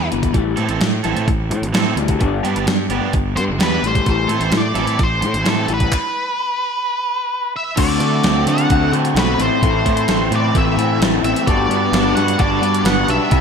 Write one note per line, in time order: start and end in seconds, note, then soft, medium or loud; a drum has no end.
0.11 0.31 G1 medium
0.11 0.33 E2 medium
0.11 0.33 B2 medium
0.11 0.33 E3 medium
0.11 closed hi-hat soft
0.23 kick medium
0.23 closed hi-hat medium
0.33 0.54 A1 medium
0.33 0.56 A2 medium
0.33 0.56 E3 medium
0.33 0.57 G3 medium
0.33 muted overdriven electric guitar stroke soft
0.33 kick medium
0.33 closed hi-hat soft
0.56 0.78 A2 medium
0.56 0.67 A2 medium
0.56 0.78 E3 medium
0.56 0.79 E3 medium
0.56 0.79 C4 medium
0.56 0.79 E4 medium
0.56 0.79 A4 medium
0.56 closed hi-hat medium
0.69 0.79 A1 medium
0.69 closed hi-hat soft
0.80 1.00 A2 medium
0.80 1.02 A2 medium
0.80 1.02 E3 medium
0.80 muted overdriven electric guitar stroke soft
0.80 snare medium
0.80 closed hi-hat soft
1.04 1.14 A1 medium
1.04 1.25 A2 medium
1.04 1.26 E3 medium
1.04 1.25 E3 medium
1.04 1.26 C4 medium
1.04 1.27 E4 medium
1.04 1.27 A4 medium
1.04 snare soft
1.04 closed hi-hat medium
1.16 1.25 A2 medium
1.16 closed hi-hat soft
1.27 1.52 A1 medium
1.27 1.48 A2 medium
1.27 1.48 E3 medium
1.27 muted overdriven electric guitar stroke soft
1.27 kick medium
1.27 closed hi-hat medium
1.50 1.63 A2 medium
1.50 1.72 A2 medium
1.50 1.72 E3 medium
1.50 muted overdriven electric guitar stroke soft
1.50 closed hi-hat medium
1.62 1.72 A1 medium
1.62 closed hi-hat medium
1.73 1.92 A2 medium
1.73 1.95 A2 medium
1.73 1.96 E3 medium
1.73 1.95 E3 medium
1.73 1.97 C4 medium
1.73 1.96 E4 medium
1.73 1.96 A4 medium
1.73 snare loud
1.73 closed hi-hat medium
1.96 2.16 D2 medium
1.96 2.19 A2 medium
1.96 2.19 E3 medium
1.96 2.19 G3 medium
1.96 muted overdriven electric guitar stroke soft
1.96 closed hi-hat medium
2.08 kick medium
2.08 closed hi-hat medium
2.19 2.40 G1 medium
2.19 2.43 G3 medium
2.19 2.43 B3 medium
2.19 2.43 D4 loud
2.19 muted overdriven electric guitar stroke soft
2.19 kick medium
2.19 closed hi-hat medium
2.44 2.53 G2 medium
2.44 2.65 G3 medium
2.44 2.66 B3 medium
2.44 2.65 B3 medium
2.44 2.66 D4 medium
2.44 2.66 G4 medium
2.44 closed hi-hat medium
2.56 2.65 G1 medium
2.56 closed hi-hat soft
2.67 2.86 G2 medium
2.67 2.88 G3 medium
2.67 2.88 B3 medium
2.67 muted overdriven electric guitar stroke soft
2.67 snare medium
2.67 closed hi-hat medium
2.89 2.99 G1 medium
2.89 3.11 G3 medium
2.89 3.12 G3 medium
2.89 3.12 B3 medium
2.89 3.12 D4 medium
2.89 3.13 G4 medium
2.89 closed hi-hat medium
3.00 3.11 G2 medium
3.13 3.37 G1 medium
3.13 3.35 G3 medium
3.13 3.35 B3 medium
3.13 muted overdriven electric guitar stroke soft
3.13 kick medium
3.13 closed hi-hat medium
3.35 3.50 G2 medium
3.35 3.58 G3 medium
3.35 3.58 B3 medium
3.35 3.43 C5 medium
3.35 muted overdriven electric guitar stroke soft
3.35 closed hi-hat medium
3.48 3.57 G1 medium
3.58 3.78 E2 medium
3.58 3.82 G3 medium
3.58 3.81 G3 medium
3.58 3.82 B3 medium
3.58 3.82 D4 medium
3.58 3.82 G4 medium
3.58 snare medium
3.58 closed hi-hat medium
3.62 3.82 B3 medium
3.62 3.85 B4 medium
3.82 4.02 A1 medium
3.82 4.06 A2 medium
3.82 4.06 E3 medium
3.82 muted overdriven electric guitar stroke soft
3.82 closed hi-hat medium
3.86 4.06 G3 medium
3.86 4.08 C5 medium
3.95 kick medium
3.95 closed hi-hat medium
4.06 4.26 A1 medium
4.06 4.29 A2 medium
4.06 4.29 E3 medium
4.06 4.29 G3 medium
4.06 4.51 C5 medium
4.06 muted overdriven electric guitar stroke soft
4.06 kick medium
4.06 closed hi-hat soft
4.27 4.38 A2 medium
4.27 4.51 A2 medium
4.27 4.51 E3 medium
4.27 4.52 C4 medium
4.27 4.52 E4 medium
4.27 4.52 A4 medium
4.27 closed hi-hat medium
4.32 4.51 E3 medium
4.40 4.50 A1 medium
4.40 closed hi-hat soft
4.51 4.71 A2 medium
4.51 4.75 A2 medium
4.51 4.75 E3 medium
4.51 muted overdriven electric guitar stroke soft
4.51 snare medium
4.51 closed hi-hat medium
4.57 5.03 D5 medium
4.74 4.85 A1 medium
4.74 4.98 A2 medium
4.74 4.98 E3 medium
4.74 4.98 C4 medium
4.74 4.98 E4 medium
4.74 4.98 A4 medium
4.74 snare soft
4.74 closed hi-hat medium
4.86 4.97 A2 medium
4.86 closed hi-hat medium
4.99 5.23 A1 medium
4.99 5.21 A2 medium
4.99 5.21 E3 medium
4.99 muted overdriven electric guitar stroke soft
4.99 kick loud
4.99 closed hi-hat medium
5.03 5.49 C5 medium
5.21 5.35 A2 medium
5.21 5.44 A2 medium
5.21 5.44 E3 medium
5.21 muted overdriven electric guitar stroke soft
5.21 closed hi-hat medium
5.34 5.44 A1 medium
5.34 closed hi-hat medium
5.44 5.65 A2 medium
5.44 5.67 A2 medium
5.44 5.68 E3 medium
5.44 5.68 C4 medium
5.44 5.68 E4 medium
5.44 5.67 A4 medium
5.44 snare medium
5.44 closed hi-hat medium
5.50 5.72 A4 medium
5.68 5.88 A1 medium
5.68 5.91 A2 medium
5.68 5.91 E3 medium
5.68 5.91 G3 medium
5.68 muted overdriven electric guitar stroke soft
5.68 closed hi-hat medium
5.74 7.53 B4 medium
5.80 kick medium
5.80 closed hi-hat medium
5.92 kick medium
5.92 clap medium
7.56 7.77 E5 medium
7.76 7.97 D2 medium
7.76 8.45 D3 medium
7.76 8.69 D3 medium
7.76 8.49 A3 medium
7.76 8.48 C4 medium
7.76 8.46 F#4 loud
7.76 8.44 D5 medium
7.76 kick loud
7.76 closed hi-hat medium
7.76 crash loud
7.99 8.20 D3 medium
7.99 9.14 A3 medium
7.99 closed hi-hat medium
8.23 8.44 D2 medium
8.23 8.69 C4 medium
8.23 snare medium
8.23 closed hi-hat medium
8.46 8.66 D3 medium
8.46 8.92 D3 medium
8.46 8.70 A3 medium
8.46 8.70 C4 medium
8.46 8.71 F#4 medium
8.46 8.91 F#5 medium
8.46 snare soft
8.46 closed hi-hat medium
8.58 closed hi-hat medium
8.70 8.90 D2 medium
8.70 9.15 D3 medium
8.70 8.94 A3 medium
8.70 9.40 C4 medium
8.70 8.93 C4 medium
8.70 8.92 F#4 medium
8.70 kick loud
8.70 closed hi-hat medium
8.92 9.12 D3 medium
8.92 9.39 D3 medium
8.92 9.16 A3 soft
8.92 9.17 C4 medium
8.92 9.17 F#4 medium
8.92 closed hi-hat medium
9.05 closed hi-hat medium
9.15 9.35 B1 medium
9.15 9.38 D3 medium
9.15 9.39 A3 medium
9.15 9.38 C4 medium
9.15 9.39 F#4 medium
9.15 snare loud
9.15 closed hi-hat medium
9.19 9.33 B4 medium
9.34 9.60 A2 medium
9.34 9.40 B4 medium
9.39 9.49 A1 medium
9.39 9.61 A2 medium
9.39 9.61 E3 medium
9.39 9.62 A3 medium
9.39 9.62 C4 medium
9.39 9.63 E4 medium
9.39 10.36 C5 medium
9.39 closed hi-hat medium
9.61 9.82 A1 medium
9.61 10.78 A2 medium
9.61 10.54 A2 medium
9.61 10.55 E3 loud
9.61 10.32 A3 medium
9.61 10.31 C4 medium
9.61 10.30 E4 loud
9.61 kick loud
9.61 closed hi-hat medium
9.85 10.05 A2 medium
9.85 11.00 A3 medium
9.85 kick medium
9.85 closed hi-hat medium
9.97 closed hi-hat medium
10.08 10.28 A1 medium
10.08 10.53 C4 medium
10.08 snare loud
10.08 closed hi-hat medium
10.31 10.51 A2 medium
10.31 10.76 E3 medium
10.31 10.55 A3 medium
10.31 10.55 C4 medium
10.31 10.55 E4 medium
10.31 closed hi-hat medium
10.36 10.57 D5 medium
10.55 10.74 A1 medium
10.55 11.01 A2 medium
10.55 11.00 E3 medium
10.55 10.78 A3 medium
10.55 11.23 C4 medium
10.55 10.77 C4 medium
10.55 10.77 E4 medium
10.55 11.00 E5 medium
10.55 kick loud
10.55 closed hi-hat medium
10.77 10.97 A2 medium
10.77 11.46 E3 medium
10.77 11.01 A3 medium
10.77 11.01 C4 medium
10.77 11.01 E4 medium
10.77 closed hi-hat medium
11.00 11.20 A1 medium
11.00 11.46 E3 medium
11.00 11.47 A3 medium
11.00 11.24 A3 medium
11.00 11.23 C4 medium
11.00 11.22 E4 medium
11.00 snare loud
11.00 closed hi-hat medium
11.23 11.33 A1 medium
11.23 11.46 A3 medium
11.23 11.47 C4 medium
11.23 11.46 C4 medium
11.23 11.46 E4 medium
11.23 11.47 E5 medium
11.23 closed hi-hat medium
11.36 closed hi-hat medium
11.47 11.67 G1 medium
11.47 12.38 G3 medium
11.47 12.16 G3 medium
11.47 12.16 B3 loud
11.47 12.15 D4 medium
11.47 12.13 F#4 medium
11.47 12.13 D5 medium
11.47 kick loud
11.47 closed hi-hat medium
11.68 11.88 G2 medium
11.68 12.83 B3 medium
11.68 closed hi-hat medium
11.92 12.12 G1 loud
11.92 12.38 D4 medium
11.92 snare loud
11.92 closed hi-hat medium
12.14 12.35 G2 medium
12.14 12.62 G3 medium
12.14 12.37 B3 medium
12.14 12.38 D4 medium
12.14 12.38 F#4 medium
12.14 12.40 F#5 loud
12.14 snare soft
12.14 closed hi-hat medium
12.28 closed hi-hat medium
12.38 12.59 G1 loud
12.38 12.84 G3 medium
12.38 12.61 B3 medium
12.38 13.07 D4 medium
12.38 12.61 D4 medium
12.38 12.60 F#4 medium
12.38 12.83 D5 medium
12.38 kick loud
12.38 closed hi-hat medium
12.61 12.81 G2 loud
12.61 13.41 G3 medium
12.61 12.84 B3 medium
12.61 12.84 D4 medium
12.61 12.84 F#4 medium
12.61 closed hi-hat medium
12.74 closed hi-hat medium
12.84 13.04 G1 medium
12.84 13.30 G3 medium
12.84 13.31 B3 medium
12.84 13.07 B3 medium
12.84 13.07 D4 medium
12.84 13.06 F#4 medium
12.84 13.10 F#5 medium
12.84 snare loud
12.84 closed hi-hat medium
13.07 13.18 B1 medium
13.07 13.30 B3 medium
13.07 13.30 D4 medium
13.07 13.32 D4 medium
13.07 13.29 F#4 medium
13.07 13.41 E5 medium
13.07 closed hi-hat medium
13.29 13.41 C2 medium
13.29 13.41 C3 loud
13.29 13.41 C3 medium
13.29 13.41 E3 loud
13.29 13.41 G3 loud
13.29 13.41 B3 medium
13.29 13.41 E4 loud
13.29 kick loud
13.29 closed hi-hat medium